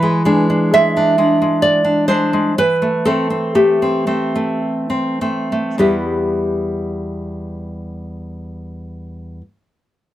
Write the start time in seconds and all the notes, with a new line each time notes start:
Already playing: E3 B4
0.03 G#3
0.25 G#3 D4
0.50 D4
0.74 G#3 E5
0.97 D4
1.18 G#3 D4
1.42 G#3
1.62 D5
1.84 D4
2.08 G#3 D4 C5
2.33 G#3
2.58 E3 B4
2.82 A3
3.05 A3 C4 A4
3.30 C4
3.55 A3 G4
3.82 C4
4.07 A3 C4
4.36 A3
4.90 C4
5.21 A3 C4
5.52 A3
5.78 E2 G3 B3 E4 G4